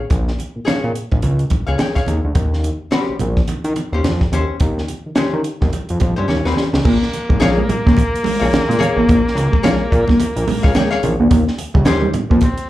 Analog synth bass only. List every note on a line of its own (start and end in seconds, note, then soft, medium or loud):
0.10 0.32 A#1 medium
0.56 0.60 A#2 soft
0.67 0.74 A#2 soft
0.84 0.93 A#2 medium
1.12 1.21 A#1 medium
1.23 1.45 C#2 medium
1.68 1.77 C#2 medium
2.08 2.21 D#2 loud
2.25 2.33 D2 medium
2.35 2.70 D#2 medium
3.09 3.13 A#1 soft
3.20 3.42 A#1 medium
3.48 3.55 D#3 soft
3.64 3.73 D#3 loud
3.93 4.01 D#2 medium
4.04 4.26 F2 medium
4.32 4.45 D#2 medium
4.61 4.82 D#2 medium
5.06 5.11 D#3 soft
5.17 5.24 D#3 soft
5.33 5.42 D#3 medium
5.62 5.71 D#2 loud
5.90 5.99 F2 medium
6.02 6.14 F2 medium
6.18 6.27 G2 medium
6.28 6.42 D#2 medium
6.45 6.54 D#2 medium
6.73 6.82 C#2 loud
6.85 6.98 A#1 loud
7.29 7.38 G#1 loud
7.41 7.63 A#1 medium
7.87 7.95 C#2 loud
8.25 8.32 A#1 medium
8.42 8.50 A#1 loud
8.69 8.78 A#2 loud
8.97 9.05 A1 medium
9.10 9.22 A#1 loud
9.35 9.48 C#2 loud
9.64 9.77 A#1 medium
9.92 10.05 A#2 loud
10.36 10.45 A#1 medium
10.64 10.73 C#2 medium
11.03 11.16 A#1 loud
11.20 11.28 D2 medium
11.31 11.44 D#2 loud
11.75 11.88 C#2 loud
11.86 12.08 D#2 medium
12.31 12.40 F2 loud